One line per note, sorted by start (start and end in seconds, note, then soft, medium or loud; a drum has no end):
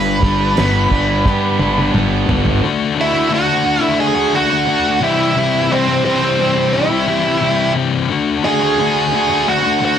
0.00 0.21 G1 medium
0.00 1.61 G2 medium
0.00 1.91 B4 medium
0.23 0.55 G1 medium
0.23 1.93 G3 medium
0.23 1.60 D4 medium
0.23 kick medium
0.57 0.90 G1 medium
0.57 2.28 B3 medium
0.57 1.26 B3 medium
0.57 snare loud
0.57 open hi-hat soft
0.91 1.23 G1 medium
0.91 2.64 G3 medium
0.91 1.59 D4 medium
0.91 kick medium
1.26 1.58 G2 medium
1.26 1.93 B3 medium
1.26 2.63 G4 medium
1.26 kick loud
1.26 snare medium
1.59 1.91 G1 medium
1.59 2.63 D4 medium
1.59 2.64 D4 medium
1.59 high tom medium
1.78 high tom medium
1.94 2.26 G1 medium
1.94 2.62 G3 medium
1.94 2.64 B3 medium
1.94 mid tom medium
2.28 2.60 G1 medium
2.28 2.64 D3 medium
2.28 2.63 B3 medium
2.28 floor tom medium
2.45 floor tom medium
2.62 2.95 D3 medium
2.62 2.96 A3 loud
2.62 2.97 D4 loud
2.62 2.98 F#4 loud
2.96 3.28 D3 medium
2.96 3.15 A3 medium
2.96 3.13 D4 medium
2.96 3.12 F#4 medium
3.01 3.34 E4 loud
3.13 3.29 A3 medium
3.13 3.30 D4 medium
3.13 3.31 F#4 medium
3.29 3.63 D3 loud
3.29 3.65 A3 loud
3.29 3.65 D4 loud
3.29 3.66 F#4 medium
3.34 3.82 F#4 loud
3.64 4.17 D3 medium
3.64 3.83 A3 medium
3.64 3.81 D4 medium
3.64 3.80 F#4 medium
3.81 4.16 A3 medium
3.81 4.15 D4 medium
3.81 3.98 E4 loud
3.81 4.13 F#4 medium
4.00 4.36 G#4 loud
4.15 4.32 A3 medium
4.15 4.33 D4 medium
4.15 4.35 F#4 medium
4.32 4.65 D3 medium
4.32 4.52 A3 medium
4.32 4.50 D4 medium
4.32 5.03 F#4 loud
4.32 4.48 F#4 medium
4.50 4.66 A3 medium
4.50 4.67 D4 medium
4.50 4.68 F#4 medium
4.66 5.00 D3 loud
4.66 5.00 A3 loud
4.66 5.01 D4 loud
4.66 5.01 F#4 loud
5.00 5.34 C3 medium
5.00 5.35 E3 medium
5.00 5.36 G3 medium
5.00 5.37 C4 loud
5.00 5.74 E4 medium
5.00 5.37 G4 loud
5.36 6.03 C3 medium
5.36 5.69 E3 loud
5.36 5.70 G3 medium
5.36 5.71 C4 loud
5.36 5.72 G4 loud
5.70 6.04 E3 medium
5.70 5.89 G3 medium
5.70 6.04 C4 medium
5.70 5.88 C4 medium
5.70 5.86 G4 loud
5.87 6.05 G3 medium
5.87 6.05 C4 medium
5.87 6.06 G4 medium
6.04 6.73 C3 loud
6.04 6.37 E3 loud
6.04 6.38 G3 loud
6.04 6.76 C4 medium
6.04 6.40 C4 loud
6.04 6.40 G4 loud
6.38 6.90 E3 medium
6.38 6.58 G3 medium
6.38 6.57 C4 medium
6.38 6.55 G4 medium
6.56 6.92 G3 medium
6.56 6.90 C4 medium
6.56 6.89 G4 medium
6.73 7.72 E4 medium
6.90 7.07 G3 medium
6.90 7.08 C4 medium
6.90 7.08 G4 medium
7.07 7.41 E3 medium
7.07 7.26 G3 medium
7.07 7.25 C4 medium
7.07 7.23 G4 medium
7.24 7.41 G3 medium
7.24 7.42 C4 medium
7.24 7.43 G4 medium
7.40 8.08 C3 loud
7.40 7.73 E3 medium
7.40 7.75 G3 loud
7.40 7.76 C4 loud
7.40 7.77 G4 loud
7.75 8.08 E3 medium
7.75 8.08 G3 medium
7.75 8.09 C4 medium
7.75 8.09 G4 medium
8.09 8.42 D3 medium
8.09 8.44 A3 loud
8.09 8.44 D4 loud
8.09 8.46 F#4 loud
8.44 8.77 D3 medium
8.44 8.62 A3 medium
8.44 8.61 D4 medium
8.44 8.59 F#4 medium
8.44 9.51 G#4 loud
8.60 8.78 A3 medium
8.60 8.79 D4 medium
8.60 8.80 F#4 medium
8.78 9.11 D3 loud
8.78 9.12 A3 loud
8.78 9.14 D4 loud
8.78 9.14 F#4 loud
9.13 9.64 D3 medium
9.13 9.31 A3 medium
9.13 9.30 D4 medium
9.13 9.28 F#4 medium
9.30 9.65 A3 medium
9.30 9.64 D4 medium
9.30 9.62 F#4 medium
9.49 9.84 F#4 loud
9.63 9.80 A3 medium
9.63 9.81 D4 medium
9.63 9.82 F#4 medium
9.80 9.99 D3 medium
9.80 9.98 A3 medium
9.80 9.97 D4 medium
9.80 9.96 F#4 medium
9.85 9.99 F#4 loud